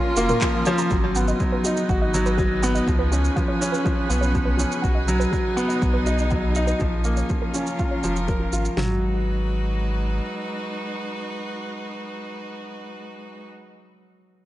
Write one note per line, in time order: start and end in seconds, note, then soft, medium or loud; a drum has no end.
0.00 0.42 F3 medium
0.00 0.17 A#3 medium
0.00 0.92 C#4 medium
0.00 1.68 C#4 medium
0.00 0.92 F4 medium
0.00 1.69 F4 medium
0.00 0.91 A#4 medium
0.16 0.33 F1 medium
0.16 0.40 A#3 loud
0.16 0.24 F#4 medium
0.16 shaker medium
0.29 0.34 A#4 medium
0.29 mid tom medium
0.29 shaker soft
0.41 0.65 F3 medium
0.41 0.45 F4 loud
0.41 kick loud
0.41 clap loud
0.41 shaker soft
0.66 0.90 F3 loud
0.66 0.69 C#5 medium
0.66 shaker medium
0.78 0.81 A#5 medium
0.78 shaker soft
0.90 1.33 G#1 loud
0.90 1.14 F#3 medium
0.90 0.96 F#4 medium
0.90 kick loud
0.90 shaker soft
1.15 1.39 B3 medium
1.15 1.18 F#5 medium
1.15 shaker medium
1.25 3.65 D#4 medium
1.25 1.31 D#5 medium
1.25 shaker soft
1.32 7.59 G#4 medium
1.40 1.63 F#3 medium
1.40 kick medium
1.40 shaker soft
1.52 1.55 B4 loud
1.64 1.88 D#4 medium
1.64 1.69 F#4 medium
1.64 shaker medium
1.77 6.81 B4 medium
1.77 shaker soft
1.89 2.80 G#1 medium
1.89 2.03 F#4 medium
1.89 1.92 F#5 medium
1.89 kick loud
1.89 shaker soft
2.02 2.04 D#5 medium
2.14 2.37 F#3 medium
2.14 shaker medium
2.26 2.29 B4 medium
2.26 shaker soft
2.38 2.52 F#3 medium
2.38 2.43 F#4 medium
2.38 kick loud
2.38 shaker soft
2.63 2.86 B3 loud
2.63 2.66 F#5 medium
2.63 shaker medium
2.75 2.78 D#5 medium
2.75 shaker soft
2.87 3.30 C#2 loud
2.87 3.11 F3 medium
2.87 4.84 F3 medium
2.87 kick loud
2.87 shaker soft
2.93 5.63 C#4 medium
2.99 3.02 B4 medium
3.12 3.35 C#4 medium
3.12 3.17 F4 medium
3.12 shaker medium
3.25 shaker soft
3.36 3.60 F3 medium
3.36 3.39 F5 medium
3.36 kick loud
3.36 shaker soft
3.48 3.51 C#5 medium
3.61 3.84 C#4 medium
3.61 shaker medium
3.72 3.76 B4 medium
3.72 shaker soft
3.85 4.09 F3 medium
3.85 3.90 F4 medium
3.85 kick loud
3.85 shaker soft
4.09 4.64 B1 medium
4.09 4.33 B3 medium
4.09 4.13 F5 medium
4.09 shaker medium
4.21 4.25 C#5 medium
4.21 shaker soft
4.35 4.58 F3 medium
4.35 kick medium
4.35 shaker soft
4.45 4.49 B4 medium
4.57 4.82 C#4 medium
4.57 4.63 F4 medium
4.57 shaker medium
4.72 shaker soft
4.82 5.26 B1 medium
4.82 4.98 F#4 medium
4.82 4.86 F#5 medium
4.82 kick loud
4.82 shaker soft
4.95 4.98 D#5 medium
5.08 5.31 F#3 medium
5.08 7.59 D#4 medium
5.08 shaker medium
5.20 5.23 B4 loud
5.20 shaker soft
5.31 5.47 F#3 medium
5.31 5.37 F#4 medium
5.31 kick medium
5.31 shaker soft
5.56 5.80 B3 medium
5.56 5.60 F#5 medium
5.56 shaker medium
5.68 5.72 D#5 medium
5.68 shaker soft
5.82 6.74 B1 medium
5.82 6.05 F#3 medium
5.82 kick loud
5.82 shaker soft
5.94 5.97 B4 loud
6.06 6.30 D#4 medium
6.06 6.12 F#4 medium
6.06 shaker medium
6.19 shaker soft
6.30 6.55 F#3 medium
6.30 6.34 F#5 medium
6.30 kick loud
6.30 shaker soft
6.43 6.46 D#5 medium
6.55 6.79 D#4 medium
6.55 shaker medium
6.67 6.71 B4 loud
6.67 shaker soft
6.79 7.23 A#1 medium
6.79 7.04 F3 medium
6.79 6.85 F4 medium
6.79 kick medium
6.79 shaker soft
6.88 8.77 C#4 medium
7.04 7.28 A#3 medium
7.04 8.76 F4 medium
7.04 7.08 F5 medium
7.04 shaker medium
7.17 7.20 C#5 medium
7.17 shaker soft
7.30 7.53 F3 medium
7.30 kick medium
7.30 shaker soft
7.42 7.45 A#4 medium
7.54 7.78 C#4 medium
7.54 7.59 F4 medium
7.54 shaker medium
7.62 8.77 A#4 medium
7.67 shaker soft
7.79 7.93 F4 medium
7.79 7.82 F5 medium
7.79 kick medium
7.79 shaker soft
7.91 7.94 C#5 medium
8.03 8.46 F1 medium
8.03 8.27 F3 medium
8.03 8.08 C#5 medium
8.03 shaker medium
8.16 shaker soft
8.28 8.33 F#4 medium
8.28 8.52 A#4 medium
8.28 kick medium
8.28 shaker soft
8.40 8.48 F4 medium
8.52 8.69 G#1 medium
8.52 8.60 F4 medium
8.52 8.76 F4 medium
8.52 shaker medium
8.65 8.68 F5 medium
8.65 shaker soft
8.76 10.20 G#1 medium
8.76 9.00 F#3 medium
8.76 13.46 G#3 medium
8.76 9.00 F#4 medium
8.76 snare medium
8.76 floor tom medium
8.84 13.46 D#4 medium
8.92 13.47 F#4 medium
9.00 13.47 B4 medium